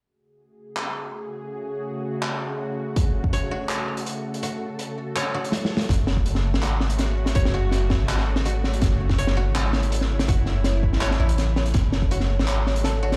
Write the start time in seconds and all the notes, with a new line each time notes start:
0.04 C#3 A3 F#4 G#4
0.77 clap
2.23 clap
2.96 A4, kick, closed hi-hat
3.24 kick
3.33 C#5, closed hi-hat
3.51 F#4
3.69 clap, closed hi-hat
3.97 closed hi-hat
4.06 closed hi-hat
4.34 closed hi-hat
4.43 F#4, closed hi-hat
4.79 closed hi-hat
5.16 C#5, clap, closed hi-hat
5.34 F#4
5.44 closed hi-hat
5.52 snare, closed hi-hat
5.65 snare
5.77 snare, closed hi-hat
5.89 F#1 C#3 A3 F#4 C#5, kick, snare, closed hi-hat
6.07 snare
6.17 kick
6.26 closed hi-hat
6.35 snare
6.53 G#1, snare
6.62 F#4, clap, closed hi-hat
6.80 snare
6.90 closed hi-hat
6.99 snare, closed hi-hat
7.26 snare, closed hi-hat
7.35 F#1 C#5, kick, closed hi-hat
7.45 snare
7.54 F#4
7.71 snare, closed hi-hat
7.90 kick, snare
8.00 G#1
8.09 clap, closed hi-hat
8.18 snare
8.36 snare
8.45 F#4, closed hi-hat
8.64 snare
8.73 closed hi-hat
8.82 F#1 E4, kick, snare, closed hi-hat
9.09 kick, snare
9.18 C#5, closed hi-hat
9.27 snare
9.37 F#4
9.46 G#1
9.55 clap, snare, closed hi-hat
9.73 snare
9.83 closed hi-hat
9.92 closed hi-hat
10.01 snare
10.19 snare, closed hi-hat
10.28 F#1 F#4, kick, closed hi-hat
10.46 snare
10.64 snare, closed hi-hat
10.83 kick
10.93 G#1, snare
11.01 C#5, clap, closed hi-hat
11.11 snare
11.20 A1 E4
11.29 closed hi-hat
11.38 snare, closed hi-hat
11.56 snare
11.66 closed hi-hat
11.74 F#1 F#4, kick, snare, closed hi-hat
11.92 snare
12.02 kick
12.11 F#4, closed hi-hat
12.20 snare
12.39 G#1, snare
12.47 clap, closed hi-hat
12.67 snare
12.76 closed hi-hat
12.84 A4, snare, closed hi-hat
13.03 F#4
13.12 snare, closed hi-hat